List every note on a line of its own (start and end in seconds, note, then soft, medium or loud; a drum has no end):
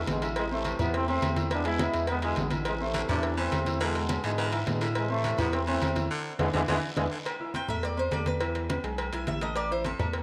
0.07 0.73 A1 loud
0.07 0.35 B2 medium
0.07 0.35 D3 medium
0.07 0.28 G#3 medium
0.07 0.19 B3 medium
0.07 0.19 B4 medium
0.07 0.19 B5 medium
0.07 cowbell medium
0.07 high conga medium
0.07 low timbale medium
0.07 short guiro medium
0.22 0.45 E4 medium
0.22 0.46 E5 medium
0.22 0.46 E6 medium
0.22 cowbell medium
0.22 low agogo medium
0.22 short guiro medium
0.36 0.51 C3 medium
0.36 0.52 E3 medium
0.36 0.44 G#3 loud
0.36 cowbell loud
0.36 high conga soft
0.36 low agogo loud
0.36 long guiro medium
0.51 1.05 C3 medium
0.51 0.94 E3 medium
0.51 0.78 A3 loud
0.51 0.74 C4 medium
0.51 0.74 C5 medium
0.51 0.75 C6 medium
0.51 high conga soft
0.65 cowbell medium
0.65 high conga medium
0.65 low timbale medium
0.65 low agogo medium
0.65 short guiro medium
0.79 1.19 E2 loud
0.79 1.03 E3 loud
0.79 0.93 B3 loud
0.79 1.03 E4 loud
0.79 1.03 E5 medium
0.79 high conga soft
0.79 low conga medium
0.79 low agogo loud
0.79 short guiro medium
0.94 1.08 E3 medium
0.94 1.08 A3 medium
0.94 1.08 C4 loud
0.94 cowbell loud
0.94 high conga soft
0.94 long guiro medium
1.08 1.49 E3 medium
1.08 1.49 A3 medium
1.08 1.31 C4 medium
1.08 1.49 C4 loud
1.08 1.31 C5 medium
1.08 1.32 C6 medium
1.08 high conga soft
1.08 low agogo medium
1.22 1.88 E2 loud
1.22 cowbell medium
1.22 high conga medium
1.22 low timbale medium
1.22 low agogo loud
1.22 short guiro medium
1.36 1.48 E4 medium
1.36 1.48 E5 medium
1.36 1.49 E6 medium
1.36 cowbell medium
1.36 high conga medium
1.36 short guiro medium
1.50 1.62 E3 medium
1.50 1.66 G#3 medium
1.50 1.66 B3 medium
1.50 1.66 D4 loud
1.50 1.62 E4 medium
1.50 1.62 E5 medium
1.50 cowbell loud
1.50 high conga soft
1.50 low agogo loud
1.50 long guiro medium
1.65 1.88 G#3 medium
1.65 2.09 G#3 medium
1.65 2.09 B3 medium
1.65 2.06 E4 loud
1.65 1.89 G#4 medium
1.65 1.89 G#5 medium
1.65 cowbell medium
1.65 high conga soft
1.79 cowbell medium
1.79 high conga loud
1.79 low timbale medium
1.79 low agogo medium
1.79 short guiro medium
1.93 2.34 E2 loud
1.93 2.17 B3 medium
1.93 2.17 B4 medium
1.93 2.17 B5 medium
1.93 cowbell medium
1.93 high conga soft
1.93 short guiro medium
2.07 2.23 D3 medium
2.07 2.22 G#3 medium
2.07 2.16 B3 loud
2.07 cowbell loud
2.07 high conga soft
2.07 low agogo loud
2.07 long guiro medium
2.22 2.63 B2 medium
2.22 2.63 D3 medium
2.22 2.50 G#3 loud
2.22 2.35 E4 medium
2.22 2.35 E5 medium
2.22 2.35 E6 medium
2.22 cowbell medium
2.22 high conga soft
2.22 low agogo medium
2.36 3.03 A1 loud
2.36 2.49 B3 medium
2.36 2.49 B4 medium
2.36 2.49 B5 medium
2.36 cowbell medium
2.36 high conga medium
2.36 low timbale medium
2.36 short guiro medium
2.51 2.75 E4 medium
2.51 2.75 E5 medium
2.51 2.75 E6 medium
2.51 cowbell medium
2.51 high conga medium
2.51 low agogo medium
2.51 short guiro medium
2.65 2.81 C3 medium
2.65 2.81 E3 medium
2.65 2.73 G#3 medium
2.65 cowbell loud
2.65 high conga soft
2.65 low agogo loud
2.65 long guiro medium
2.80 3.34 C3 medium
2.80 3.35 E3 medium
2.80 3.08 A3 medium
2.80 3.04 C4 medium
2.80 3.04 C5 medium
2.80 3.04 C6 medium
2.80 high conga soft
2.94 3.02 D3 medium
2.94 cowbell medium
2.94 high conga medium
2.94 low timbale medium
2.94 low agogo medium
2.94 short guiro medium
3.09 3.49 E2 loud
3.09 3.24 C3 medium
3.09 3.33 E3 medium
3.09 3.38 A3 medium
3.09 3.36 D4 loud
3.09 3.33 E4 medium
3.09 3.33 E5 medium
3.09 high conga soft
3.09 low conga medium
3.09 low agogo loud
3.09 short guiro medium
3.23 cowbell loud
3.23 high conga soft
3.23 long guiro medium
3.37 3.60 E3 medium
3.37 3.79 E3 medium
3.37 3.78 A3 medium
3.37 3.61 C4 medium
3.37 3.78 C4 loud
3.37 3.61 C5 medium
3.37 3.61 C6 medium
3.37 high conga soft
3.37 low agogo loud
3.52 4.18 E2 loud
3.52 cowbell medium
3.52 high conga medium
3.52 low timbale medium
3.52 low agogo loud
3.52 short guiro medium
3.66 3.78 E4 medium
3.66 3.78 E5 medium
3.66 3.78 E6 medium
3.66 cowbell medium
3.66 high conga medium
3.66 short guiro medium
3.80 4.24 B2 medium
3.80 4.03 D3 medium
3.80 4.24 D3 medium
3.80 3.92 E3 medium
3.80 4.22 G#3 medium
3.80 3.92 E4 medium
3.80 3.93 E5 medium
3.80 cowbell loud
3.80 high conga soft
3.80 low agogo loud
3.80 long guiro medium
3.95 4.19 G#3 medium
3.95 4.19 G#4 medium
3.95 4.19 G#5 medium
3.95 cowbell medium
3.95 high conga soft
4.09 cowbell medium
4.09 high conga loud
4.09 low timbale medium
4.09 low agogo medium
4.09 short guiro medium
4.23 4.64 G#2 loud
4.23 4.56 B2 medium
4.23 4.56 D3 medium
4.23 4.31 E3 medium
4.23 4.51 G#3 loud
4.23 4.47 B3 medium
4.23 4.47 B4 medium
4.23 4.48 B5 medium
4.23 cowbell medium
4.23 high conga soft
4.23 short guiro medium
4.38 4.61 E3 medium
4.38 cowbell loud
4.38 high conga soft
4.38 low agogo loud
4.38 long guiro medium
4.52 4.64 E4 medium
4.52 4.64 E5 medium
4.52 4.64 E6 medium
4.52 cowbell medium
4.52 high conga soft
4.52 low agogo medium
4.66 5.33 A2 loud
4.66 4.94 B2 medium
4.66 4.94 D3 medium
4.66 4.88 G#3 medium
4.66 4.79 B3 medium
4.66 4.79 B4 medium
4.66 4.79 B5 medium
4.66 cowbell medium
4.66 high conga medium
4.66 low timbale medium
4.66 short guiro medium
4.81 4.88 D3 medium
4.81 5.05 E4 medium
4.81 5.05 E5 medium
4.81 5.05 E6 medium
4.81 cowbell medium
4.81 low agogo medium
4.81 short guiro medium
4.95 5.10 C3 medium
4.95 5.10 E3 medium
4.95 5.10 G#3 medium
4.95 cowbell loud
4.95 high conga soft
4.95 low agogo loud
4.95 long guiro medium
5.09 5.64 C3 medium
5.09 5.54 E3 medium
5.09 5.37 A3 loud
5.09 5.33 C4 medium
5.09 5.33 C5 medium
5.09 5.33 C6 medium
5.09 high conga soft
5.24 5.32 D3 medium
5.24 cowbell medium
5.24 high conga medium
5.24 low timbale medium
5.24 low agogo medium
5.24 short guiro medium
5.38 5.79 E2 loud
5.38 5.54 C3 medium
5.38 5.62 E3 loud
5.38 5.53 B3 medium
5.38 5.62 E4 medium
5.38 5.62 E5 loud
5.38 high conga soft
5.38 low conga loud
5.38 low agogo loud
5.38 short guiro medium
5.52 5.67 E3 medium
5.52 5.68 A3 medium
5.52 5.60 C4 loud
5.52 cowbell loud
5.52 high conga soft
5.52 long guiro medium
5.67 5.90 E3 medium
5.67 6.08 E3 medium
5.67 6.08 A3 medium
5.67 5.91 C4 medium
5.67 6.08 C4 loud
5.67 5.91 C5 medium
5.67 5.91 C6 medium
5.67 high conga soft
5.67 low agogo medium
5.81 6.09 E2 loud
5.81 cowbell medium
5.81 high conga medium
5.81 low timbale medium
5.81 low agogo loud
5.81 short guiro medium
5.95 6.08 E4 medium
5.95 6.08 E5 medium
5.95 6.08 E6 medium
5.95 cowbell medium
5.95 high conga medium
5.95 short guiro medium
6.11 6.33 D3 loud
6.39 6.50 E2 loud
6.39 6.47 D3 medium
6.39 6.47 E3 loud
6.39 6.47 G#3 loud
6.39 6.48 B4 loud
6.39 6.48 D5 loud
6.39 6.48 E5 loud
6.39 cowbell loud
6.39 high conga loud
6.39 high timbale loud
6.39 long guiro loud
6.53 6.64 E2 loud
6.53 6.61 D3 loud
6.53 6.61 E3 medium
6.53 6.61 E3 loud
6.53 6.61 G#3 loud
6.53 6.63 B4 loud
6.53 6.63 D5 loud
6.53 6.63 E5 loud
6.53 cowbell medium
6.53 high conga loud
6.53 high timbale loud
6.53 long guiro loud
6.68 6.79 E2 loud
6.68 6.76 D3 loud
6.68 6.91 E3 medium
6.68 6.75 E3 loud
6.68 6.75 G#3 loud
6.68 6.77 B4 loud
6.68 6.77 D5 loud
6.68 6.77 E5 medium
6.68 cowbell loud
6.68 high conga loud
6.68 high timbale medium
6.68 long guiro loud
6.97 7.08 E2 loud
6.97 7.04 D3 medium
6.97 7.04 E3 medium
6.97 7.04 G#3 medium
6.97 7.06 B4 loud
6.97 7.06 D5 loud
6.97 7.06 E5 medium
6.97 cowbell loud
6.97 high conga loud
6.97 high timbale loud
6.97 long guiro loud
7.11 7.19 D3 medium
7.26 cowbell loud
7.26 high conga soft
7.26 low agogo loud
7.40 7.52 E4 medium
7.40 7.52 E5 medium
7.40 7.52 E6 medium
7.40 high conga soft
7.54 7.66 C4 medium
7.54 7.66 C5 medium
7.54 7.69 G5 medium
7.54 7.66 C6 medium
7.54 cowbell medium
7.54 high conga medium
7.54 low timbale medium
7.54 low agogo medium
7.68 8.09 E2 loud
7.68 7.92 A3 medium
7.68 7.92 A4 medium
7.68 7.83 E5 medium
7.68 7.92 A5 medium
7.68 high conga soft
7.68 low conga medium
7.68 low agogo loud
7.83 7.98 D5 medium
7.83 cowbell loud
7.83 high conga soft
7.97 8.09 C4 medium
7.97 8.09 C5 medium
7.97 8.12 C5 medium
7.97 8.10 C6 medium
7.97 high conga soft
7.97 low agogo medium
8.11 8.78 E2 medium
8.11 8.35 A3 medium
8.11 8.36 A4 medium
8.11 8.27 D5 medium
8.11 8.36 A5 medium
8.11 cowbell medium
8.11 high conga medium
8.11 low timbale medium
8.11 low agogo loud
8.26 8.83 B4 medium
8.26 cowbell medium
8.26 high conga medium
8.40 8.64 E3 medium
8.40 8.64 E4 medium
8.40 8.64 E5 medium
8.40 cowbell loud
8.40 low agogo loud
8.55 cowbell medium
8.55 high conga soft
8.69 8.81 B3 medium
8.69 8.81 B4 medium
8.69 8.81 B5 medium
8.69 cowbell medium
8.69 high conga loud
8.69 low timbale medium
8.69 low agogo medium
8.84 9.11 B1 loud
8.84 9.07 G#3 medium
8.84 9.08 G#4 medium
8.84 9.08 G#5 medium
8.84 cowbell medium
8.84 high conga soft
8.98 cowbell loud
8.98 high conga soft
8.98 low agogo loud
9.12 9.26 B1 medium
9.12 9.36 E4 medium
9.12 9.37 E5 medium
9.12 9.27 G#5 medium
9.12 9.37 E6 medium
9.12 cowbell medium
9.12 high conga soft
9.12 low agogo medium
9.27 9.94 A1 loud
9.27 9.42 E5 medium
9.27 cowbell medium
9.27 high conga medium
9.27 low timbale medium
9.41 9.65 A3 medium
9.41 9.65 A4 medium
9.41 9.56 D#5 medium
9.41 9.66 A5 medium
9.41 cowbell medium
9.41 low agogo medium
9.56 9.70 D5 medium
9.56 cowbell loud
9.56 high conga soft
9.56 low agogo loud
9.70 9.82 E4 medium
9.70 9.85 C5 medium
9.70 9.83 E5 medium
9.70 9.83 E6 medium
9.70 high conga soft
9.84 9.97 C4 medium
9.84 10.23 A4 medium
9.84 9.97 C5 medium
9.84 9.97 C6 medium
9.84 cowbell medium
9.84 high conga medium
9.84 low timbale medium
9.84 low agogo medium
9.99 10.23 E2 loud
9.99 10.23 A3 medium
9.99 10.23 A4 medium
9.99 10.23 A5 medium
9.99 high conga soft
9.99 low conga medium
9.99 low agogo loud
10.13 cowbell loud
10.13 high conga soft